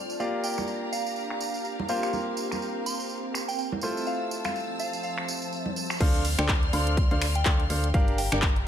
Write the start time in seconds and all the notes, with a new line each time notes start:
Already playing: A3 C4 D4 F4 C5 D5 A5 F6
0.10 tambourine
0.20 A#3 D4 F4 G4 D5 F5 A#5, tambourine
0.35 G4 A#5
0.44 F5 G5, tambourine
0.58 finger snap, tambourine, high conga
0.68 tambourine
0.92 F5, tambourine
1.06 tambourine
1.16 tambourine
1.30 finger snap
1.41 tambourine
1.54 tambourine
1.65 tambourine, shaker
1.80 high conga
1.88 A#3 C4 F4 G4 A#4 C5 F5, tambourine
2.03 F5, finger snap, tambourine
2.13 tambourine, high conga
2.37 tambourine, shaker
2.51 finger snap, tambourine, high conga, shaker
2.62 tambourine, shaker
2.86 C6, tambourine, shaker
3.00 tambourine, shaker
3.09 tambourine, shaker
3.34 finger snap, tambourine, shaker
3.48 G5, tambourine, shaker
3.59 G5, tambourine, shaker
3.72 high conga
3.81 A3 E4 F4 C5 A5 E6, tambourine, shaker
3.97 A5, tambourine, shaker
4.07 F5, tambourine, shaker
4.18 F3
4.31 tambourine, shaker
4.38 C5
4.44 F5, finger snap, tambourine, high conga
4.56 tambourine, shaker
4.79 F5, tambourine, shaker
4.93 tambourine, shaker
5.03 F5, tambourine, shaker
5.18 finger snap
5.28 tambourine, shaker
5.42 tambourine, shaker
5.52 tambourine, shaker
5.66 high conga
5.76 tambourine, shaker
5.90 finger snap, tambourine, shaker
6.00 D2 D4 A4 C5 D5 F5 C6 F6, kick, closed hi-hat, crash
6.14 closed hi-hat
6.25 open hi-hat
6.38 D2 D4 A4 C5 G5, finger snap, closed hi-hat
6.49 kick, clap, closed hi-hat
6.63 closed hi-hat
6.73 D2 D4 A4 C5 F5 C6, open hi-hat
6.87 closed hi-hat
6.97 kick, closed hi-hat
7.11 D2 D4 A4 C5 F5, closed hi-hat
7.22 finger snap, open hi-hat
7.35 G5, closed hi-hat
7.45 D2 D4 A4 C5 F5, kick, clap, closed hi-hat
7.60 closed hi-hat
7.70 D2 D4 A4 C5 F5, open hi-hat
7.84 closed hi-hat
7.94 G1 D4 G4 A#4 F5 A#5, kick, closed hi-hat
8.08 closed hi-hat
8.18 G5, open hi-hat
8.32 G1 D4 G4 A#4 G5, finger snap, closed hi-hat
8.42 kick, clap, closed hi-hat
8.56 closed hi-hat